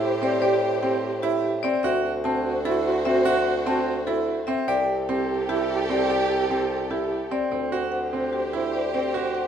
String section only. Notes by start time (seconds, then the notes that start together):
Already playing: G4 C5
1.85 F#4 C5
4.69 G4 A4
7.52 G4 C5